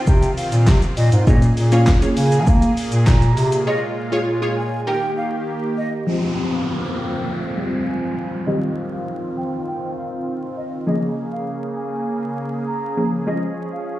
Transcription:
Already playing: supersaw synth D#3 C4 F4, synth pluck D#4 G4 C5
0.07 bass clarinet C3, flute G5, kick, shaker
0.23 closed hi-hat, shaker
0.37 flute F5, open hi-hat, shaker
0.52 bass clarinet A#2, closed hi-hat, shaker
0.67 bass clarinet C3, kick, snare, clap, shaker
0.82 closed hi-hat, shaker
0.97 bass clarinet A#2, flute D#5, open hi-hat, shaker
1.12 bass clarinet G#2, closed hi-hat, shaker
1.27 supersaw synth A#2 A#3 G#4, bass clarinet A#2, synth pluck A#3 C#4 F4 G#4 C#5, flute D#5, kick, shaker
1.42 closed hi-hat, shaker
1.57 bass clarinet A#2, open hi-hat, shaker
1.72 synth pluck A#3 C#4 F4 G#4 C#5, flute F5, closed hi-hat, shaker
1.87 kick, snare, clap, shaker
2.02 synth pluck A#3 C#4 F4 G#4 C#5, closed hi-hat, shaker
2.17 bass clarinet C#3, flute G#5, open hi-hat, shaker
2.32 closed hi-hat, shaker
2.47 bass clarinet A#3, kick, shaker
2.62 closed hi-hat, shaker
2.77 open hi-hat, shaker
2.92 bass clarinet A#2, closed hi-hat, shaker
3.07 bass clarinet A#2, flute A#5, kick, snare, clap, shaker
3.22 closed hi-hat, shaker
3.37 bass clarinet C3, open hi-hat, shaker
3.52 closed hi-hat, shaker
3.67 supersaw synth G#3 F4, synth pluck F4 G#4 C#5, flute D#5
4.12 synth pluck F4 G#4 C#5, flute F5
4.42 synth pluck F4 G#4 C#5
4.57 flute G#5
4.87 supersaw synth D#3 A#3 G4, synth pluck D#4 G4 A#4, flute G5
5.17 flute F5
5.77 flute D#5
6.07 synth pluck F3 G#3 C4 G4, supersaw synth F3 C4 F4, flute D#5, downlifter
6.52 flute F5
6.97 flute G5
7.57 synth pluck F3 G3 G#3 C4
7.87 flute G#5
8.47 synth pluck D#3 G3 C4 G4, supersaw synth D#3 C4, flute D#5
8.92 flute F5
9.37 flute G5
9.67 flute G5
9.97 flute F5
10.57 flute D#5
10.87 supersaw synth C#3 A#3 G#4, synth pluck F3 A#3 C#4 G#4, flute D#5
11.32 flute F5
11.77 flute G#5
12.67 flute A#5
12.97 synth pluck F3 A#3 C#4 G#4
13.27 synth pluck F3 G#3 C#4 G#4, supersaw synth F3 C#4, flute D#5
13.72 flute F5

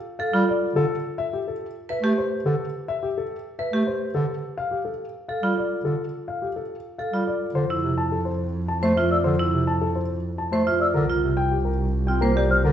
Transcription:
0.19 marimba A4, grand piano F5
0.34 bass clarinet G3, marimba F4
0.49 grand piano D5
0.75 bass clarinet D3, grand piano A4
1.18 grand piano E5
1.33 grand piano G4
1.48 grand piano A4
1.89 marimba B4, grand piano E5
2.03 bass clarinet A3, marimba G4
2.18 grand piano C5
2.45 bass clarinet D3, grand piano A4
2.88 grand piano E5
3.03 grand piano G4
3.18 grand piano A4
3.59 marimba B4, grand piano E5
3.73 bass clarinet A3, marimba G4
3.87 grand piano C5
4.15 bass clarinet D3, grand piano A4
4.58 grand piano F5
4.71 grand piano G4
4.85 grand piano A4
5.28 marimba A4, grand piano F5
5.43 bass clarinet G3, marimba F4
5.58 grand piano D5
5.85 bass clarinet D3, grand piano A4
6.28 grand piano F5
6.42 grand piano G4
6.56 grand piano A4
6.98 marimba A4, grand piano F5
7.13 bass clarinet G3, marimba F4
7.27 grand piano D5
7.55 double bass F2, bass clarinet D3, grand piano C5
7.70 marimba E4
7.83 bass clarinet C3
7.98 grand piano A5
8.12 grand piano A4
8.25 grand piano C5
8.68 grand piano A5
8.83 bass clarinet A3, grand piano C5, marimba C5
8.96 marimba F4, grand piano E5
9.10 grand piano D5, flute E6
9.24 bass clarinet D3, grand piano C5
9.39 marimba E4
9.54 bass clarinet C3
9.67 grand piano A5
9.81 grand piano A4
9.95 grand piano C5
10.38 grand piano A5
10.52 bass clarinet A3, grand piano C5, marimba C5
10.66 marimba F4, grand piano E5
10.80 grand piano D5, flute E6
10.94 double bass C2, bass clarinet D3, grand piano A#4
11.10 marimba F4
11.23 bass clarinet C3
11.37 grand piano G5
11.52 grand piano G4
11.65 grand piano A#4
12.07 bass clarinet C4, marimba F4, grand piano G5
12.21 bass clarinet A#3, grand piano A#4, marimba C5
12.36 marimba G4, grand piano D5
12.50 grand piano C5, flute F6
12.64 bass clarinet D3, grand piano A#4

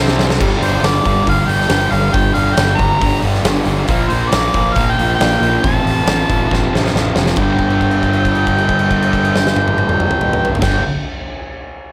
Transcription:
Already playing: picked electric bass C2, distorted electric guitar C3 G3 C4
0.08 snare
0.19 snare
0.30 snare
0.37 picked electric bass G1, distorted electric guitar G2 D3, kick, crash
0.42 distorted electric guitar G3
0.58 picked electric bass G1, distorted electric guitar G3, harmonica C5
0.62 distorted electric guitar D3, open hi-hat
0.81 picked electric bass G1, distorted electric guitar G2 D3, snare, open hi-hat
0.85 distorted electric guitar G3, harmonica D5
1.02 picked electric bass G1, distorted electric guitar G3, kick, open hi-hat
1.07 distorted electric guitar D3
1.23 picked electric bass G1, distorted electric guitar G2 D3, kick, open hi-hat
1.28 distorted electric guitar G3, harmonica F5
1.41 distorted electric guitar G3, harmonica F5
1.47 picked electric bass G1, distorted electric guitar G2 D3, harmonica G5, open hi-hat
1.61 snare
1.67 picked electric bass G1, distorted electric guitar G2 D3, snare, open hi-hat
1.72 distorted electric guitar G3
1.89 picked electric bass G1, distorted electric guitar G3, harmonica F5, open hi-hat
1.94 distorted electric guitar D3
2.10 distorted electric guitar G2 D3, harmonica G5, open hi-hat
2.14 picked electric bass G1, distorted electric guitar G3, kick
2.33 picked electric bass G1, distorted electric guitar G3, harmonica F5, open hi-hat
2.38 distorted electric guitar D3
2.54 picked electric bass G1, distorted electric guitar G2 D3, harmonica G5, snare, open hi-hat
2.60 distorted electric guitar G3
2.77 picked electric bass G1, distorted electric guitar G3, harmonica A#5, kick, open hi-hat
2.82 distorted electric guitar D3
3.00 picked electric bass G1, distorted electric guitar G2 D3, kick, open hi-hat
3.04 distorted electric guitar G3
3.20 picked electric bass G1, distorted electric guitar D3 G3, open hi-hat
3.25 distorted electric guitar G2
3.34 snare
3.43 picked electric bass G1, distorted electric guitar G2 D3, snare, open hi-hat
3.47 distorted electric guitar G3
3.64 picked electric bass G1, distorted electric guitar G3, open hi-hat
3.69 distorted electric guitar D3
3.85 picked electric bass A#1, distorted electric guitar A#2 F3, kick, open hi-hat
3.91 distorted electric guitar A#3
4.08 picked electric bass A#1, distorted electric guitar A#3, harmonica C5, open hi-hat
4.13 distorted electric guitar F3
4.30 picked electric bass A#1, distorted electric guitar A#2 F3, harmonica D5, snare, open hi-hat
4.35 distorted electric guitar A#3
4.53 picked electric bass A#1, distorted electric guitar A#3, kick, open hi-hat
4.59 distorted electric guitar F3
4.73 picked electric bass A#1, distorted electric guitar A#2, harmonica F5, kick, open hi-hat
4.78 distorted electric guitar F3 A#3
4.91 harmonica G5
4.98 picked electric bass A#1, distorted electric guitar F3 A#3, open hi-hat
5.03 distorted electric guitar A#2
5.15 distorted electric guitar A#2, harmonica G5
5.20 picked electric bass A#1, distorted electric guitar F3 A#3, snare, open hi-hat
5.41 picked electric bass A#1, distorted electric guitar A#3, open hi-hat
5.45 distorted electric guitar F3
5.59 distorted electric guitar F2, harmonica A5
5.64 picked electric bass A1, distorted electric guitar C3 F3, kick, open hi-hat
5.84 picked electric bass A1, distorted electric guitar F3, open hi-hat
5.89 distorted electric guitar C3
6.05 picked electric bass A1, distorted electric guitar F2 C3, snare, open hi-hat
6.10 distorted electric guitar F3
6.26 picked electric bass A1, distorted electric guitar F3, kick, open hi-hat
6.32 distorted electric guitar C3
6.49 picked electric bass A1, distorted electric guitar F2 C3, kick
6.53 distorted electric guitar F3, snare
6.72 picked electric bass A1, distorted electric guitar C3 F3, snare
6.76 distorted electric guitar F2
6.86 snare
6.93 picked electric bass A1, distorted electric guitar F2 C3, snare
6.98 distorted electric guitar F3
7.14 picked electric bass F1, distorted electric guitar F3, snare
7.19 distorted electric guitar C3
7.26 snare
7.36 picked electric bass G1, distorted electric guitar G2 D3, harmonica G5, kick, crash
7.40 distorted electric guitar G3
7.58 kick, crash
7.70 crash
7.81 kick, crash
7.91 crash
8.03 kick, crash
8.13 crash
8.25 kick, crash
8.35 crash
8.47 kick, crash
8.58 crash
8.69 kick, crash
8.79 crash
8.90 kick, crash
9.02 crash
9.13 kick, crash
9.25 crash
9.36 snare
9.47 snare
9.56 high tom
9.68 high tom
9.78 high tom
9.89 mid tom
10.00 mid tom
10.11 mid tom
10.21 mid tom
10.33 mid tom
10.45 floor tom
10.55 floor tom
10.61 picked electric bass G1, distorted electric guitar G2 D3 G3, harmonica G5, kick, snare, crash

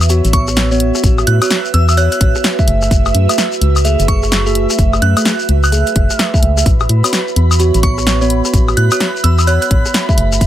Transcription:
Already playing: fm bass E2, ambient pad F#4 B4 E5, analog synth pad E5
0.01 high woodblock, shekere
0.09 tine electric piano B3 F#4 C#5, closed hi-hat, shekere
0.25 fm bass A1, closed hi-hat, shekere
0.33 synth bell C#6, kick, closed hi-hat
0.47 cross-stick, shekere
0.57 snare, closed hi-hat, shekere
0.71 tine electric piano B3 F#4 C#5, shekere
0.80 closed hi-hat
0.95 cross-stick, shekere
1.04 fm bass A1, kick, closed hi-hat, shekere
1.18 cross-stick, high woodblock, shekere
1.27 fm bass A2, synth bell F#6, closed hi-hat
1.42 tine electric piano B3 F#4 C#5, synth bell F#6, closed hi-hat, high woodblock, shekere
1.50 snare, closed hi-hat, shekere
1.65 shekere
1.74 fm bass E2, synth bell E6, closed hi-hat
1.89 synth bell E6, high woodblock, shekere
1.97 tine electric piano B3 F#4 C#5, synth bell F#6, closed hi-hat, shekere
2.12 synth bell F#6, closed hi-hat, shekere
2.21 fm bass A1, kick, closed hi-hat
2.35 cross-stick, shekere
2.44 snare, closed hi-hat, shekere
2.59 tine electric piano A3 G#4 E5, kick, shekere
2.68 fm bass F#1, closed hi-hat
2.82 cross-stick, shekere
2.91 fm bass F#1, kick, closed hi-hat, shekere
3.06 cross-stick, high woodblock, shekere
3.15 fm bass F#2, closed hi-hat
3.29 tine electric piano A3 G#4 E5, closed hi-hat, high woodblock, shekere
3.38 snare, closed hi-hat, shekere
3.52 shekere
3.61 fm bass C#2, closed hi-hat
3.76 high woodblock, shekere
3.85 tine electric piano A3 G#4 E5, closed hi-hat, shekere
3.99 fm bass F#1, closed hi-hat, shekere
4.08 synth bell C#6, kick, closed hi-hat
4.23 cross-stick, shekere
4.32 snare, closed hi-hat, shekere
4.46 tine electric piano A3 G#4 E5, shekere
4.55 closed hi-hat
4.70 cross-stick, shekere
4.78 fm bass F#1, kick, closed hi-hat, shekere
4.93 cross-stick, high woodblock, shekere
5.02 fm bass F#2, synth bell F#6, closed hi-hat
5.17 tine electric piano A3 G#4 E5, synth bell F#6, closed hi-hat, high woodblock, shekere
5.25 snare, closed hi-hat, shekere
5.39 shekere
5.49 fm bass C#2, closed hi-hat
5.64 synth bell F#6, high woodblock, shekere
5.72 tine electric piano A3 G#4 E5, closed hi-hat, shekere
5.87 closed hi-hat, shekere
5.96 fm bass F#1, kick, closed hi-hat
6.10 cross-stick, shekere
6.19 snare, closed hi-hat, shekere
6.34 tine electric piano A3 G#4 E5, kick, shekere
6.43 fm bass C#2, closed hi-hat
6.57 cross-stick, shekere
6.66 fm bass A1, analog synth pad B5, kick, closed hi-hat, shekere
6.80 cross-stick, high woodblock, shekere
6.89 fm bass A2, closed hi-hat
7.04 tine electric piano B3 F#4 C#5, closed hi-hat, high woodblock, shekere
7.13 snare, closed hi-hat, shekere
7.28 shekere
7.36 fm bass E2, closed hi-hat
7.51 high woodblock, shekere
7.59 tine electric piano B3 F#4 C#5, closed hi-hat, shekere
7.74 fm bass A1, closed hi-hat, shekere
7.83 synth bell C#6, kick, closed hi-hat
7.98 cross-stick, shekere
8.07 snare, closed hi-hat, shekere
8.21 tine electric piano B3 F#4 C#5, shekere
8.30 closed hi-hat
8.45 cross-stick, shekere
8.54 fm bass A1, kick, closed hi-hat, shekere
8.68 cross-stick, high woodblock, shekere
8.77 fm bass A2, synth bell F#6, closed hi-hat
8.91 tine electric piano B3 F#4 C#5, synth bell F#6, closed hi-hat, high woodblock, shekere
9.00 snare, closed hi-hat, shekere
9.16 shekere
9.24 fm bass E2, synth bell E6, closed hi-hat
9.38 synth bell E6, high woodblock, shekere
9.47 tine electric piano B3 F#4 C#5, synth bell F#6, closed hi-hat, shekere
9.62 synth bell F#6, closed hi-hat, shekere
9.71 fm bass A1, kick, closed hi-hat
9.85 cross-stick, shekere
9.94 snare, closed hi-hat, shekere
10.09 tine electric piano A3 G#4 E5, kick, shekere
10.18 fm bass F#1, closed hi-hat
10.32 cross-stick, shekere
10.41 fm bass F#1, kick, closed hi-hat, shekere

